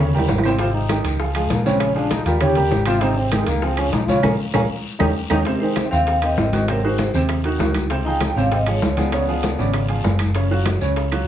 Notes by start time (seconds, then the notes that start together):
Already playing: D#2
0.00 C#3 C#4 C#5
0.14 G3 G4 A#4, high conga, low conga
0.18 low timbale
0.28 G#1, high bongo, low bongo, high conga, low timbale, short guiro
0.38 low timbale
0.43 C3 C4 C5, high bongo, short guiro, claves
0.49 low timbale
0.59 C3 C4 F4 C5, high bongo, high conga, high timbale, long guiro
0.74 D#4, high bongo, high conga
0.89 D#3 D#4 G4, high bongo, high conga, high timbale, short guiro, claves
1.04 C#2, high bongo, high conga, high timbale, short guiro
1.20 F3 F4 G#4, high bongo, high conga, long guiro
1.35 F3 G#3 F4 G#4, high conga, high timbale, claves
1.50 A#1 A#3, high bongo, low bongo, high conga, high timbale, short guiro
1.66 C#3 C4 C#4 C#5, high bongo, high conga, short guiro
1.80 C#4, high bongo, high conga, high timbale, long guiro, claves
1.95 F3 D4 F4 G#4, high bongo, high conga
2.11 D#4, high bongo, high conga, high timbale, short guiro
2.25 D#2 G3 F4 G4 A#4, high bongo, high conga, high timbale, short guiro
2.41 C#3 C#4 G4 C#5, high bongo, high conga, low conga, high timbale, long guiro, claves
2.55 G3 G4 A#4, high conga, low conga, high timbale
2.71 G#1, high bongo, low bongo, high conga, low timbale, short guiro
2.86 C3 C4 F4 C5, high bongo, high timbale, short guiro, claves
3.01 C3 C4 D#4 C5, high bongo, high conga, high timbale, long guiro
3.17 C4, high bongo, high conga
3.32 D#3 G#3 D#4 G4, high bongo, high conga, high timbale, short guiro, claves
3.47 C#2 A#3, high bongo, high conga, high timbale, short guiro
3.62 F3 C4 F4 G#4, high bongo, high conga, long guiro
3.77 F3 C#4 F4 G#4, high conga, high timbale, claves
3.93 A#1 D#4, high bongo, low bongo, high conga, high timbale, short guiro
4.08 C#3 C#4 F4 C#5, high bongo, high conga, short guiro
4.23 A#1 C#4 F4 G#4 A#4, low bongo, high conga, high timbale, long guiro, claves
4.54 A#1 C#4 F4 G#4 A#4, low bongo, high conga, high timbale, long guiro, claves
4.99 D#2 C#4 D#4 G4, low bongo, high conga, high timbale, long guiro, claves
5.30 D#2 C#4 D#4 G4, low bongo, high conga, high timbale, long guiro, claves
5.45 C3 C4 C5, high bongo, high conga, high timbale, long guiro
5.53 G3 A#4
5.60 D#3 G#3 D#4 G4 C5, high conga
5.76 high bongo, high conga, high timbale, low timbale, short guiro, claves
5.85 C4 E5
5.91 D#2 C3 C4 C5 F5, high conga, short guiro
6.07 high bongo, high conga, high timbale, long guiro
6.22 D#3 C4 D#4 G4 D#5, high conga, high timbale, claves
6.37 G#1, high bongo, low bongo, high conga, low timbale, short guiro
6.53 D#3 D#4 F#4, high conga, high timbale, short guiro
6.68 C3 F#3 C4 A#4 C5, high bongo, high conga, high timbale, long guiro, claves
6.83 D#3 G#3 D#4 F#4 C5, high bongo, high conga
6.98 high bongo, high conga, high timbale, low timbale, short guiro
7.14 D#2 C3 C4 C5, high bongo, high conga, short guiro
7.29 high bongo, high conga, high timbale, long guiro, claves
7.44 D#3 D#4 F#4, high bongo, high conga, high timbale
7.59 C#2 D#3 D#4 F#4, high bongo, low bongo, high conga, low timbale, short guiro
7.75 high conga, high timbale, short guiro, claves
7.90 C3 C4 C5, high bongo, high timbale, long guiro
8.05 F3 D#4 F4 G#4 G5, high conga
8.21 high bongo, high conga, high timbale, low timbale, short guiro, claves
8.36 G#1 C3 C4 C#4 C5 F5, high conga, short guiro
8.52 C4 D#5, high bongo, high conga, high timbale, long guiro
8.66 F3 G#3 F4 G#4 C#5, high conga, high timbale, claves
8.82 C#2, high bongo, low bongo, high conga, low timbale, short guiro
8.97 F3 B3 F4 G#4 D5, high conga, high timbale, short guiro
9.12 C#3 C#4 C#5, high bongo, high conga, high timbale, long guiro, claves
9.28 F3 F4 G#4, high bongo, high conga
9.43 high bongo, high conga, high timbale, low timbale, short guiro
9.58 G#1 C#3 C#4 D5, high bongo, high conga, short guiro
9.74 high bongo, high conga, high timbale, long guiro, claves
9.89 F3 F4 G#4, high bongo, high conga, high timbale
10.04 F#1 F3 F4 G#4, high bongo, low bongo, high conga, low timbale, short guiro
10.19 high conga, high timbale, short guiro, claves
10.35 C#3 C#4 C#5, high bongo, high conga, high timbale, long guiro
10.51 F#3 F4 F#4, high conga
10.65 high bongo, high conga, high timbale, low timbale, short guiro, claves
10.81 C#2 C#3 C#4 C#5, high conga, short guiro
10.96 high bongo, high conga, high timbale, long guiro
11.12 F#3 F4 F#4, high conga, high timbale, claves